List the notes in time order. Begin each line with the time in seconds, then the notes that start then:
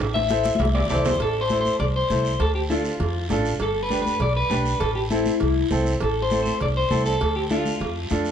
0.00 A1, cowbell, high conga
0.14 E5, high conga, high timbale
0.29 E4 A4 C5, high conga, short guiro
0.43 high conga, short guiro
0.55 high conga, long guiro
0.60 C2, cowbell, low timbale
0.65 high conga
0.75 D5, low timbale
0.85 low conga
0.90 C2 E4 A4 C5 D5, low timbale, short guiro
0.95 low conga
1.05 C5, low conga, low timbale, short guiro
1.16 A1, low conga, long guiro
1.20 A4, cowbell, low conga
1.41 C5
1.49 E4 A4 C5, high conga, short guiro
1.61 C5
1.65 high conga, short guiro
1.79 C2 D5, cowbell, low conga, long guiro
1.96 C5
2.10 C2 E4 A4 C5, high conga, low conga, short guiro
2.25 short guiro
2.40 D2 A4, cowbell, low conga, long guiro
2.55 G4
2.70 D4 F4 A4, high conga, short guiro
2.85 short guiro
3.00 F2, cowbell, low conga, long guiro
3.29 A1 D4 F4 A4, high conga, low timbale, short guiro
3.45 short guiro
3.59 G1 A4, cowbell, long guiro
3.83 B4
3.90 D4 G4 B4, high conga, short guiro
4.02 B4, high conga
4.07 short guiro
4.20 B1 D5, cowbell, low conga, long guiro
4.37 B4
4.50 B1 D4 G4 B4, high conga, low timbale, short guiro
4.65 short guiro
4.80 A1 A4, cowbell, low conga, long guiro
4.95 G4
5.10 C4 E4 A4, high conga, short guiro
5.25 high conga, short guiro
5.40 C2, cowbell, low conga, long guiro
5.70 C2 C4 E4 A4, high conga, low conga, short guiro
5.86 short guiro
6.01 A1 A4, cowbell, low conga, long guiro
6.22 C5
6.30 C4 E4 A4, high conga, short guiro
6.43 C5, high conga, short guiro
6.60 C2 D5, cowbell, low conga, long guiro
6.77 C5
6.90 C2 C4 E4 A4, high conga, low conga, short guiro
7.06 A4, short guiro
7.21 D2, cowbell, low conga, long guiro
7.36 G4
7.50 D4 F4 A4, high conga, short guiro
7.65 high conga, short guiro
7.80 F2, cowbell, low conga, long guiro
8.10 F2 D4 F4 A4, high conga, short guiro
8.25 short guiro